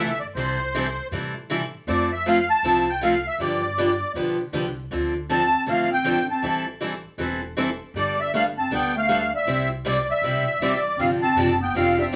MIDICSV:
0, 0, Header, 1, 5, 480
1, 0, Start_track
1, 0, Tempo, 379507
1, 445, Time_signature, 4, 2, 24, 8
1, 15376, End_track
2, 0, Start_track
2, 0, Title_t, "Accordion"
2, 0, Program_c, 0, 21
2, 0, Note_on_c, 0, 76, 82
2, 240, Note_off_c, 0, 76, 0
2, 254, Note_on_c, 0, 74, 73
2, 339, Note_off_c, 0, 74, 0
2, 450, Note_on_c, 0, 72, 77
2, 1358, Note_off_c, 0, 72, 0
2, 2388, Note_on_c, 0, 74, 89
2, 2655, Note_off_c, 0, 74, 0
2, 2688, Note_on_c, 0, 76, 75
2, 2866, Note_off_c, 0, 76, 0
2, 2879, Note_on_c, 0, 77, 96
2, 3141, Note_off_c, 0, 77, 0
2, 3164, Note_on_c, 0, 81, 106
2, 3649, Note_off_c, 0, 81, 0
2, 3665, Note_on_c, 0, 79, 87
2, 3834, Note_off_c, 0, 79, 0
2, 3836, Note_on_c, 0, 77, 85
2, 4128, Note_off_c, 0, 77, 0
2, 4141, Note_on_c, 0, 76, 83
2, 4296, Note_off_c, 0, 76, 0
2, 4312, Note_on_c, 0, 74, 73
2, 5211, Note_off_c, 0, 74, 0
2, 6714, Note_on_c, 0, 81, 106
2, 7196, Note_off_c, 0, 81, 0
2, 7207, Note_on_c, 0, 77, 83
2, 7465, Note_off_c, 0, 77, 0
2, 7505, Note_on_c, 0, 79, 97
2, 7933, Note_off_c, 0, 79, 0
2, 7983, Note_on_c, 0, 81, 79
2, 8411, Note_off_c, 0, 81, 0
2, 10084, Note_on_c, 0, 74, 89
2, 10369, Note_off_c, 0, 74, 0
2, 10375, Note_on_c, 0, 76, 83
2, 10530, Note_off_c, 0, 76, 0
2, 10563, Note_on_c, 0, 77, 91
2, 10688, Note_off_c, 0, 77, 0
2, 10859, Note_on_c, 0, 81, 90
2, 11029, Note_off_c, 0, 81, 0
2, 11062, Note_on_c, 0, 79, 94
2, 11338, Note_off_c, 0, 79, 0
2, 11359, Note_on_c, 0, 77, 91
2, 11778, Note_off_c, 0, 77, 0
2, 11841, Note_on_c, 0, 76, 85
2, 12259, Note_off_c, 0, 76, 0
2, 12489, Note_on_c, 0, 74, 77
2, 12771, Note_off_c, 0, 74, 0
2, 12787, Note_on_c, 0, 76, 77
2, 13433, Note_on_c, 0, 74, 76
2, 13673, Note_off_c, 0, 76, 0
2, 13912, Note_on_c, 0, 77, 82
2, 13913, Note_off_c, 0, 74, 0
2, 14039, Note_off_c, 0, 77, 0
2, 14197, Note_on_c, 0, 81, 93
2, 14636, Note_off_c, 0, 81, 0
2, 14708, Note_on_c, 0, 79, 82
2, 14873, Note_off_c, 0, 79, 0
2, 14881, Note_on_c, 0, 77, 89
2, 15140, Note_off_c, 0, 77, 0
2, 15180, Note_on_c, 0, 76, 75
2, 15254, Note_off_c, 0, 76, 0
2, 15376, End_track
3, 0, Start_track
3, 0, Title_t, "Steel-string acoustic guitar"
3, 0, Program_c, 1, 25
3, 459, Note_on_c, 1, 48, 62
3, 462, Note_on_c, 1, 52, 54
3, 468, Note_on_c, 1, 55, 61
3, 472, Note_on_c, 1, 60, 64
3, 474, Note_on_c, 1, 64, 62
3, 476, Note_on_c, 1, 69, 71
3, 718, Note_off_c, 1, 48, 0
3, 720, Note_off_c, 1, 52, 0
3, 723, Note_off_c, 1, 55, 0
3, 725, Note_off_c, 1, 60, 0
3, 726, Note_off_c, 1, 64, 0
3, 727, Note_off_c, 1, 69, 0
3, 943, Note_on_c, 1, 48, 89
3, 943, Note_on_c, 1, 52, 77
3, 948, Note_on_c, 1, 55, 76
3, 951, Note_on_c, 1, 60, 78
3, 955, Note_on_c, 1, 64, 90
3, 959, Note_on_c, 1, 69, 88
3, 1075, Note_off_c, 1, 48, 0
3, 1075, Note_off_c, 1, 52, 0
3, 1078, Note_off_c, 1, 55, 0
3, 1080, Note_off_c, 1, 60, 0
3, 1082, Note_off_c, 1, 64, 0
3, 1084, Note_off_c, 1, 69, 0
3, 1414, Note_on_c, 1, 48, 61
3, 1420, Note_on_c, 1, 52, 61
3, 1422, Note_on_c, 1, 55, 67
3, 1427, Note_on_c, 1, 60, 67
3, 1430, Note_on_c, 1, 64, 63
3, 1437, Note_on_c, 1, 69, 72
3, 1676, Note_off_c, 1, 48, 0
3, 1680, Note_off_c, 1, 52, 0
3, 1680, Note_off_c, 1, 55, 0
3, 1683, Note_off_c, 1, 60, 0
3, 1684, Note_off_c, 1, 64, 0
3, 1687, Note_off_c, 1, 69, 0
3, 1893, Note_on_c, 1, 48, 86
3, 1898, Note_on_c, 1, 55, 84
3, 1899, Note_on_c, 1, 52, 87
3, 1905, Note_on_c, 1, 60, 91
3, 1908, Note_on_c, 1, 64, 89
3, 1908, Note_on_c, 1, 69, 85
3, 2031, Note_off_c, 1, 48, 0
3, 2034, Note_off_c, 1, 52, 0
3, 2034, Note_off_c, 1, 55, 0
3, 2037, Note_off_c, 1, 60, 0
3, 2038, Note_off_c, 1, 64, 0
3, 2038, Note_off_c, 1, 69, 0
3, 2368, Note_on_c, 1, 53, 56
3, 2374, Note_on_c, 1, 57, 61
3, 2376, Note_on_c, 1, 60, 62
3, 2382, Note_on_c, 1, 64, 66
3, 2387, Note_on_c, 1, 69, 67
3, 2634, Note_off_c, 1, 53, 0
3, 2637, Note_off_c, 1, 57, 0
3, 2638, Note_off_c, 1, 60, 0
3, 2641, Note_off_c, 1, 64, 0
3, 2643, Note_off_c, 1, 69, 0
3, 2857, Note_on_c, 1, 53, 80
3, 2862, Note_on_c, 1, 57, 92
3, 2867, Note_on_c, 1, 60, 86
3, 2872, Note_on_c, 1, 64, 89
3, 2875, Note_on_c, 1, 69, 81
3, 2994, Note_off_c, 1, 53, 0
3, 2996, Note_off_c, 1, 57, 0
3, 2998, Note_off_c, 1, 60, 0
3, 3001, Note_off_c, 1, 64, 0
3, 3003, Note_off_c, 1, 69, 0
3, 3340, Note_on_c, 1, 53, 71
3, 3343, Note_on_c, 1, 57, 66
3, 3346, Note_on_c, 1, 60, 71
3, 3352, Note_on_c, 1, 69, 66
3, 3353, Note_on_c, 1, 64, 68
3, 3600, Note_off_c, 1, 53, 0
3, 3602, Note_off_c, 1, 57, 0
3, 3603, Note_off_c, 1, 60, 0
3, 3606, Note_off_c, 1, 64, 0
3, 3606, Note_off_c, 1, 69, 0
3, 3810, Note_on_c, 1, 53, 81
3, 3822, Note_on_c, 1, 57, 87
3, 3822, Note_on_c, 1, 60, 93
3, 3827, Note_on_c, 1, 64, 90
3, 3832, Note_on_c, 1, 69, 94
3, 3950, Note_off_c, 1, 53, 0
3, 3956, Note_off_c, 1, 60, 0
3, 3957, Note_off_c, 1, 57, 0
3, 3959, Note_off_c, 1, 64, 0
3, 3961, Note_off_c, 1, 69, 0
3, 4295, Note_on_c, 1, 50, 59
3, 4302, Note_on_c, 1, 53, 60
3, 4308, Note_on_c, 1, 59, 57
3, 4312, Note_on_c, 1, 62, 57
3, 4316, Note_on_c, 1, 67, 63
3, 4558, Note_off_c, 1, 50, 0
3, 4561, Note_off_c, 1, 53, 0
3, 4564, Note_off_c, 1, 59, 0
3, 4567, Note_off_c, 1, 62, 0
3, 4568, Note_off_c, 1, 67, 0
3, 4780, Note_on_c, 1, 50, 78
3, 4782, Note_on_c, 1, 53, 77
3, 4786, Note_on_c, 1, 59, 84
3, 4789, Note_on_c, 1, 62, 97
3, 4797, Note_on_c, 1, 67, 81
3, 4915, Note_off_c, 1, 50, 0
3, 4917, Note_off_c, 1, 53, 0
3, 4918, Note_off_c, 1, 59, 0
3, 4920, Note_off_c, 1, 62, 0
3, 4924, Note_off_c, 1, 67, 0
3, 5251, Note_on_c, 1, 50, 58
3, 5258, Note_on_c, 1, 53, 64
3, 5260, Note_on_c, 1, 62, 64
3, 5265, Note_on_c, 1, 59, 62
3, 5266, Note_on_c, 1, 67, 68
3, 5516, Note_off_c, 1, 50, 0
3, 5519, Note_off_c, 1, 53, 0
3, 5521, Note_off_c, 1, 62, 0
3, 5523, Note_off_c, 1, 59, 0
3, 5524, Note_off_c, 1, 67, 0
3, 5731, Note_on_c, 1, 50, 79
3, 5735, Note_on_c, 1, 53, 73
3, 5737, Note_on_c, 1, 59, 74
3, 5742, Note_on_c, 1, 62, 89
3, 5747, Note_on_c, 1, 67, 82
3, 5871, Note_off_c, 1, 50, 0
3, 5873, Note_off_c, 1, 53, 0
3, 5874, Note_off_c, 1, 59, 0
3, 5876, Note_off_c, 1, 62, 0
3, 5879, Note_off_c, 1, 67, 0
3, 6209, Note_on_c, 1, 50, 55
3, 6216, Note_on_c, 1, 53, 53
3, 6218, Note_on_c, 1, 60, 62
3, 6224, Note_on_c, 1, 62, 63
3, 6229, Note_on_c, 1, 69, 63
3, 6475, Note_off_c, 1, 50, 0
3, 6478, Note_off_c, 1, 53, 0
3, 6479, Note_off_c, 1, 60, 0
3, 6482, Note_off_c, 1, 62, 0
3, 6484, Note_off_c, 1, 69, 0
3, 6696, Note_on_c, 1, 50, 76
3, 6697, Note_on_c, 1, 53, 83
3, 6702, Note_on_c, 1, 62, 83
3, 6706, Note_on_c, 1, 60, 76
3, 6713, Note_on_c, 1, 69, 86
3, 6833, Note_off_c, 1, 50, 0
3, 6834, Note_off_c, 1, 53, 0
3, 6836, Note_off_c, 1, 62, 0
3, 6838, Note_off_c, 1, 60, 0
3, 6841, Note_off_c, 1, 69, 0
3, 7162, Note_on_c, 1, 50, 68
3, 7168, Note_on_c, 1, 53, 62
3, 7174, Note_on_c, 1, 60, 62
3, 7182, Note_on_c, 1, 62, 68
3, 7182, Note_on_c, 1, 69, 68
3, 7431, Note_off_c, 1, 50, 0
3, 7434, Note_off_c, 1, 53, 0
3, 7437, Note_off_c, 1, 60, 0
3, 7441, Note_off_c, 1, 62, 0
3, 7441, Note_off_c, 1, 69, 0
3, 7643, Note_on_c, 1, 53, 89
3, 7644, Note_on_c, 1, 50, 76
3, 7651, Note_on_c, 1, 60, 94
3, 7652, Note_on_c, 1, 62, 86
3, 7660, Note_on_c, 1, 69, 88
3, 7786, Note_off_c, 1, 53, 0
3, 7787, Note_off_c, 1, 50, 0
3, 7790, Note_off_c, 1, 60, 0
3, 7791, Note_off_c, 1, 62, 0
3, 7795, Note_off_c, 1, 69, 0
3, 8126, Note_on_c, 1, 52, 60
3, 8138, Note_on_c, 1, 55, 56
3, 8140, Note_on_c, 1, 60, 63
3, 8143, Note_on_c, 1, 64, 63
3, 8146, Note_on_c, 1, 69, 72
3, 8392, Note_off_c, 1, 52, 0
3, 8398, Note_off_c, 1, 55, 0
3, 8399, Note_off_c, 1, 60, 0
3, 8401, Note_off_c, 1, 64, 0
3, 8402, Note_off_c, 1, 69, 0
3, 8607, Note_on_c, 1, 52, 84
3, 8611, Note_on_c, 1, 55, 78
3, 8617, Note_on_c, 1, 60, 90
3, 8620, Note_on_c, 1, 64, 79
3, 8628, Note_on_c, 1, 69, 80
3, 8748, Note_off_c, 1, 52, 0
3, 8750, Note_off_c, 1, 55, 0
3, 8753, Note_off_c, 1, 60, 0
3, 8754, Note_off_c, 1, 64, 0
3, 8758, Note_off_c, 1, 69, 0
3, 9082, Note_on_c, 1, 52, 61
3, 9088, Note_on_c, 1, 55, 64
3, 9094, Note_on_c, 1, 60, 66
3, 9100, Note_on_c, 1, 64, 60
3, 9107, Note_on_c, 1, 69, 68
3, 9350, Note_off_c, 1, 52, 0
3, 9353, Note_off_c, 1, 55, 0
3, 9356, Note_off_c, 1, 60, 0
3, 9359, Note_off_c, 1, 64, 0
3, 9362, Note_off_c, 1, 69, 0
3, 9570, Note_on_c, 1, 52, 81
3, 9574, Note_on_c, 1, 55, 78
3, 9578, Note_on_c, 1, 60, 94
3, 9585, Note_on_c, 1, 64, 94
3, 9590, Note_on_c, 1, 69, 100
3, 9709, Note_off_c, 1, 52, 0
3, 9711, Note_off_c, 1, 55, 0
3, 9713, Note_off_c, 1, 60, 0
3, 9716, Note_off_c, 1, 64, 0
3, 9718, Note_off_c, 1, 69, 0
3, 10066, Note_on_c, 1, 55, 68
3, 10072, Note_on_c, 1, 59, 58
3, 10078, Note_on_c, 1, 62, 59
3, 10080, Note_on_c, 1, 69, 63
3, 10321, Note_off_c, 1, 55, 0
3, 10324, Note_off_c, 1, 59, 0
3, 10327, Note_off_c, 1, 62, 0
3, 10328, Note_off_c, 1, 69, 0
3, 10544, Note_on_c, 1, 55, 75
3, 10545, Note_on_c, 1, 59, 81
3, 10552, Note_on_c, 1, 62, 88
3, 10559, Note_on_c, 1, 69, 90
3, 10675, Note_off_c, 1, 55, 0
3, 10676, Note_off_c, 1, 59, 0
3, 10679, Note_off_c, 1, 62, 0
3, 10682, Note_off_c, 1, 69, 0
3, 11017, Note_on_c, 1, 55, 68
3, 11027, Note_on_c, 1, 59, 71
3, 11028, Note_on_c, 1, 62, 74
3, 11038, Note_on_c, 1, 69, 66
3, 11276, Note_off_c, 1, 55, 0
3, 11281, Note_off_c, 1, 59, 0
3, 11282, Note_off_c, 1, 62, 0
3, 11287, Note_off_c, 1, 69, 0
3, 11493, Note_on_c, 1, 55, 87
3, 11500, Note_on_c, 1, 59, 90
3, 11507, Note_on_c, 1, 62, 85
3, 11512, Note_on_c, 1, 69, 102
3, 11629, Note_off_c, 1, 55, 0
3, 11633, Note_off_c, 1, 59, 0
3, 11636, Note_off_c, 1, 62, 0
3, 11639, Note_off_c, 1, 69, 0
3, 11973, Note_on_c, 1, 48, 57
3, 11981, Note_on_c, 1, 55, 61
3, 11983, Note_on_c, 1, 60, 61
3, 11984, Note_on_c, 1, 64, 66
3, 11988, Note_on_c, 1, 67, 59
3, 12234, Note_off_c, 1, 48, 0
3, 12238, Note_off_c, 1, 55, 0
3, 12239, Note_off_c, 1, 60, 0
3, 12239, Note_off_c, 1, 64, 0
3, 12241, Note_off_c, 1, 67, 0
3, 12454, Note_on_c, 1, 48, 86
3, 12461, Note_on_c, 1, 55, 76
3, 12466, Note_on_c, 1, 60, 82
3, 12471, Note_on_c, 1, 64, 92
3, 12473, Note_on_c, 1, 67, 80
3, 12589, Note_off_c, 1, 48, 0
3, 12593, Note_off_c, 1, 55, 0
3, 12595, Note_off_c, 1, 60, 0
3, 12598, Note_off_c, 1, 64, 0
3, 12599, Note_off_c, 1, 67, 0
3, 12944, Note_on_c, 1, 48, 62
3, 12948, Note_on_c, 1, 60, 63
3, 12950, Note_on_c, 1, 55, 67
3, 12957, Note_on_c, 1, 64, 75
3, 12958, Note_on_c, 1, 67, 70
3, 13199, Note_off_c, 1, 48, 0
3, 13201, Note_off_c, 1, 60, 0
3, 13202, Note_off_c, 1, 55, 0
3, 13206, Note_off_c, 1, 64, 0
3, 13207, Note_off_c, 1, 67, 0
3, 13431, Note_on_c, 1, 48, 84
3, 13431, Note_on_c, 1, 55, 87
3, 13433, Note_on_c, 1, 60, 85
3, 13438, Note_on_c, 1, 64, 80
3, 13445, Note_on_c, 1, 67, 93
3, 13558, Note_off_c, 1, 48, 0
3, 13558, Note_off_c, 1, 55, 0
3, 13559, Note_off_c, 1, 60, 0
3, 13562, Note_off_c, 1, 64, 0
3, 13565, Note_off_c, 1, 67, 0
3, 13901, Note_on_c, 1, 48, 49
3, 13902, Note_on_c, 1, 53, 60
3, 13910, Note_on_c, 1, 60, 56
3, 13916, Note_on_c, 1, 62, 63
3, 13920, Note_on_c, 1, 67, 63
3, 14158, Note_off_c, 1, 48, 0
3, 14159, Note_off_c, 1, 53, 0
3, 14162, Note_off_c, 1, 60, 0
3, 14166, Note_off_c, 1, 62, 0
3, 14168, Note_off_c, 1, 67, 0
3, 14377, Note_on_c, 1, 48, 81
3, 14386, Note_on_c, 1, 53, 78
3, 14392, Note_on_c, 1, 60, 84
3, 14394, Note_on_c, 1, 62, 86
3, 14401, Note_on_c, 1, 67, 83
3, 14511, Note_off_c, 1, 48, 0
3, 14516, Note_off_c, 1, 53, 0
3, 14519, Note_off_c, 1, 60, 0
3, 14520, Note_off_c, 1, 62, 0
3, 14523, Note_off_c, 1, 67, 0
3, 14856, Note_on_c, 1, 48, 63
3, 14863, Note_on_c, 1, 53, 60
3, 14863, Note_on_c, 1, 60, 62
3, 14875, Note_on_c, 1, 62, 68
3, 14877, Note_on_c, 1, 67, 66
3, 15116, Note_off_c, 1, 48, 0
3, 15120, Note_off_c, 1, 53, 0
3, 15120, Note_off_c, 1, 60, 0
3, 15126, Note_off_c, 1, 62, 0
3, 15127, Note_off_c, 1, 67, 0
3, 15150, Note_on_c, 1, 67, 52
3, 15169, Note_on_c, 1, 62, 45
3, 15184, Note_on_c, 1, 60, 39
3, 15322, Note_off_c, 1, 67, 0
3, 15329, Note_off_c, 1, 60, 0
3, 15332, Note_off_c, 1, 62, 0
3, 15335, Note_on_c, 1, 48, 78
3, 15376, Note_off_c, 1, 48, 0
3, 15376, End_track
4, 0, Start_track
4, 0, Title_t, "Clarinet"
4, 0, Program_c, 2, 71
4, 6681, Note_on_c, 2, 60, 77
4, 7131, Note_off_c, 2, 60, 0
4, 7173, Note_on_c, 2, 57, 72
4, 7447, Note_off_c, 2, 57, 0
4, 7472, Note_on_c, 2, 60, 76
4, 7915, Note_off_c, 2, 60, 0
4, 7953, Note_on_c, 2, 60, 70
4, 8395, Note_off_c, 2, 60, 0
4, 10061, Note_on_c, 2, 55, 77
4, 10329, Note_off_c, 2, 55, 0
4, 10354, Note_on_c, 2, 55, 75
4, 10519, Note_off_c, 2, 55, 0
4, 10545, Note_on_c, 2, 57, 74
4, 10674, Note_off_c, 2, 57, 0
4, 10853, Note_on_c, 2, 60, 78
4, 11009, Note_off_c, 2, 60, 0
4, 11041, Note_on_c, 2, 59, 79
4, 11300, Note_off_c, 2, 59, 0
4, 11319, Note_on_c, 2, 57, 84
4, 11757, Note_off_c, 2, 57, 0
4, 11801, Note_on_c, 2, 55, 73
4, 12238, Note_off_c, 2, 55, 0
4, 12459, Note_on_c, 2, 55, 64
4, 12728, Note_off_c, 2, 55, 0
4, 12757, Note_on_c, 2, 55, 67
4, 13366, Note_off_c, 2, 55, 0
4, 13403, Note_on_c, 2, 55, 68
4, 13850, Note_off_c, 2, 55, 0
4, 13892, Note_on_c, 2, 60, 74
4, 14024, Note_off_c, 2, 60, 0
4, 14194, Note_on_c, 2, 60, 82
4, 14635, Note_off_c, 2, 60, 0
4, 14681, Note_on_c, 2, 59, 71
4, 14843, Note_off_c, 2, 59, 0
4, 14866, Note_on_c, 2, 60, 75
4, 15132, Note_off_c, 2, 60, 0
4, 15155, Note_on_c, 2, 55, 65
4, 15235, Note_off_c, 2, 55, 0
4, 15376, End_track
5, 0, Start_track
5, 0, Title_t, "Upright bass"
5, 0, Program_c, 3, 32
5, 0, Note_on_c, 3, 31, 79
5, 246, Note_off_c, 3, 31, 0
5, 443, Note_on_c, 3, 36, 79
5, 1213, Note_off_c, 3, 36, 0
5, 1408, Note_on_c, 3, 45, 79
5, 2177, Note_off_c, 3, 45, 0
5, 2365, Note_on_c, 3, 41, 84
5, 3135, Note_off_c, 3, 41, 0
5, 3325, Note_on_c, 3, 36, 80
5, 4095, Note_off_c, 3, 36, 0
5, 4281, Note_on_c, 3, 43, 77
5, 5053, Note_off_c, 3, 43, 0
5, 5236, Note_on_c, 3, 35, 73
5, 5650, Note_off_c, 3, 35, 0
5, 5722, Note_on_c, 3, 36, 76
5, 6133, Note_off_c, 3, 36, 0
5, 6207, Note_on_c, 3, 38, 80
5, 6976, Note_off_c, 3, 38, 0
5, 7173, Note_on_c, 3, 33, 81
5, 7939, Note_off_c, 3, 33, 0
5, 8127, Note_on_c, 3, 33, 81
5, 8895, Note_off_c, 3, 33, 0
5, 9078, Note_on_c, 3, 28, 75
5, 9849, Note_off_c, 3, 28, 0
5, 10042, Note_on_c, 3, 31, 88
5, 10811, Note_off_c, 3, 31, 0
5, 11007, Note_on_c, 3, 38, 75
5, 11773, Note_off_c, 3, 38, 0
5, 11959, Note_on_c, 3, 36, 80
5, 12729, Note_off_c, 3, 36, 0
5, 12923, Note_on_c, 3, 35, 78
5, 13331, Note_off_c, 3, 35, 0
5, 13398, Note_on_c, 3, 33, 79
5, 13809, Note_off_c, 3, 33, 0
5, 13875, Note_on_c, 3, 31, 71
5, 14345, Note_off_c, 3, 31, 0
5, 14361, Note_on_c, 3, 30, 80
5, 14829, Note_off_c, 3, 30, 0
5, 14846, Note_on_c, 3, 29, 80
5, 15312, Note_off_c, 3, 29, 0
5, 15320, Note_on_c, 3, 31, 81
5, 15376, Note_off_c, 3, 31, 0
5, 15376, End_track
0, 0, End_of_file